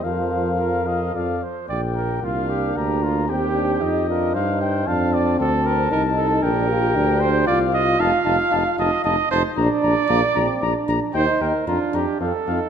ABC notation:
X:1
M:3/4
L:1/8
Q:1/4=114
K:Bb
V:1 name="Cornet"
f4 f z | g2 f2 b2 | g2 e2 f g | a2 a4 |
g4 f2 | a a a a a a | b b b b b b | g g b b f f |]
V:2 name="Trumpet"
c2 B e d c | d B F G G F | G3 B c2 | f d A B B A |
B3 c d e | f3 e e c | d4- d z | c B F G A2 |]
V:3 name="Euphonium"
F,4- F, z | z2 D4 | C2 E F E2 | D2 C2 E2 |
D F D2 F2- | F4- F z | D2 B, C D2 | E2 D2 C E |]
V:4 name="French horn"
B4 A z | B,6 | C D E D3 | C4 E2 |
D G3 F2 | E E E E E E | D D D D D D | E E D D C C |]
V:5 name="Bass trombone" clef=bass
F,,4 F,, z | B,,,2 C,,2 D,,2 | E,,2 F,,2 G,,2 | F,,2 D,,2 C,,2 |
B,,,2 D,,2 C,,2 | F,,, F,,, F,,, F,,, F,,, F,,, | B,,, B,,, B,,, B,,, B,,, B,,, | E,, E,, F,, F,, F,, F,, |]